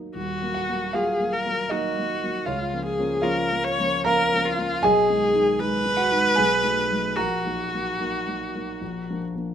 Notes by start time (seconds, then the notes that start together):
Already playing: F#3 A#3 D#4
0.15 D#1 D#2 F#4
0.42 F#3 A#3
0.54 F#4 F#5
0.68 F#3 A#3
0.93 F#3 A#3 F4 G#4 F5
1.19 F#3 A#3
1.33 A#4
1.45 F#3 A#3
1.69 F#3 A#3 D#4 F#4 A#4 D#5
1.98 F#3 A#3
2.24 F#3 A#3
2.45 C#2 F4 C#5 F5
2.73 F3 A#3 C#4
2.85 G#4
2.99 F3 A#3 C#4
3.22 F3 A#3 C#4 F4 A#4 C#5 F5
3.52 F3 A#3 C#4
3.64 C#5
3.79 F3 A#3 C#4
4.05 F3 A#3 C#4 A#4 F5 A#5
4.33 F3 A#3 C#4
4.45 F4
4.59 F3 A#3 C#4
4.83 B1 G#4 D#5 G#5
5.10 D#3 G#3 D#4
5.34 D#3 G#3 D#4
5.60 D#3 G#3 D#4 B4
5.85 D#3 G#3 D#4
5.97 F#4 F#5
6.12 D#3 G#3 D#4
6.35 B1 G#4 G#5
6.63 F#3 A3 D#4
6.91 F#3 A3 D#4
7.16 A#1 F#4 A#4 F#5 A#5
7.45 F#3 A#3 D#4
7.73 F#3 A#3 D#4
7.99 F#3 A#3 D#4
8.27 F#3 A#3 D#4
8.55 F#3 A#3 D#4
8.81 A#1
9.10 F3 A#3 D4
9.35 F3 A#3 D4